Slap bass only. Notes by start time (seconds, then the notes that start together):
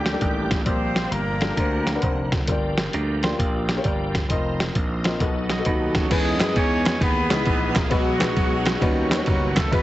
Already playing: D2
0.21 A1
0.66 A#1
1.11 G1
1.57 D2
2.03 F1
2.48 G1
2.94 D2
3.39 A#1
3.85 G1
4.30 F1
4.75 A#1
5.20 B1
5.66 D#2
6.11 E2
6.40 F#2
6.56 E2
7.01 D#2
7.31 C#2
7.46 A#1
7.91 B1
8.21 A#1
8.36 B1
8.81 D#2
9.27 F#1
9.72 G#1